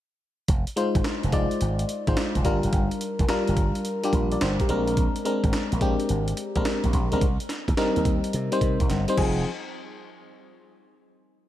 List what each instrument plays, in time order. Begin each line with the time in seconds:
0.48 slap bass F1, kick, closed hi-hat
0.67 closed hi-hat
0.76 fm electric piano G#3 D#4 F4 C5, closed hi-hat
0.95 slap bass G#1, kick, closed hi-hat
1.04 snare, closed hi-hat
1.23 slap bass F1, closed hi-hat
1.32 fm electric piano G#3 D#4 F4 D5, kick, closed hi-hat
1.51 closed hi-hat
1.61 slap bass G#1, closed hi-hat
1.79 closed hi-hat
1.89 closed hi-hat
2.07 slap bass G#1, fm electric piano G#3 D#4 F4 C5, kick, closed hi-hat
2.17 snare, closed hi-hat
2.35 slap bass F1, kick, closed hi-hat
2.45 slap bass G1, fm electric piano G3 D4 F4 A#4, kick, closed hi-hat
2.63 slap bass F#1, closed hi-hat
2.73 slap bass G1, kick, closed hi-hat
2.91 closed hi-hat
3.01 closed hi-hat
3.19 slap bass F1, kick, closed hi-hat
3.29 fm electric piano G3 D4 F4 A#4, snare, closed hi-hat
3.47 slap bass G1, closed hi-hat
3.57 kick, closed hi-hat
3.75 closed hi-hat
3.85 closed hi-hat
4.04 fm electric piano G3 D4 F4 G4, closed hi-hat
4.13 slap bass A#1, fm electric piano G4 A#4, kick, closed hi-hat
4.32 fm electric piano A#4 D5, closed hi-hat
4.41 slap bass G1, fm electric piano C5, snare, closed hi-hat
4.60 fm electric piano G4 A#4, kick, closed hi-hat
4.69 slap bass A#1, fm electric piano G#3 C4 D4 A#4, closed hi-hat
4.88 closed hi-hat
4.97 kick, closed hi-hat
5.16 closed hi-hat
5.25 fm electric piano G#3 C4 D4 A#4, closed hi-hat
5.44 slap bass G#1, kick, closed hi-hat
5.53 muted slap bass stroke, snare, closed hi-hat
5.72 slap bass A#1, closed hi-hat
5.81 fm electric piano G#3 C4 D4 G4, kick, closed hi-hat
6.00 closed hi-hat
6.09 slap bass G#1, closed hi-hat
6.28 closed hi-hat
6.37 closed hi-hat
6.56 slap bass A#1, fm electric piano G#3 C4 D4 A#4, kick, closed hi-hat
6.65 snare, closed hi-hat
6.84 slap bass A#1, kick, closed hi-hat
6.93 slap bass A#1, kick, closed hi-hat
7.12 slap bass B1, fm electric piano G#3 C4 D4 A#4, closed hi-hat
7.21 slap bass C2, kick, closed hi-hat
7.40 closed hi-hat
7.49 snare, closed hi-hat
7.68 slap bass D#2, kick, closed hi-hat
7.77 fm electric piano G3 C4 D#4 A#4, snare, closed hi-hat
7.96 slap bass D#2, closed hi-hat
8.05 kick, closed hi-hat
8.24 closed hi-hat
8.33 slap bass C3, closed hi-hat
8.52 fm electric piano G3 C4 D#4 C5, closed hi-hat
8.61 slap bass C3, kick, closed hi-hat
8.80 slap bass C2, kick, closed hi-hat
8.90 slap bass G1, snare, closed hi-hat
9.08 fm electric piano G3 C4 D#4 C5, closed hi-hat
9.18 slap bass F1, fm electric piano F3 C4 D#4 G#4, kick, crash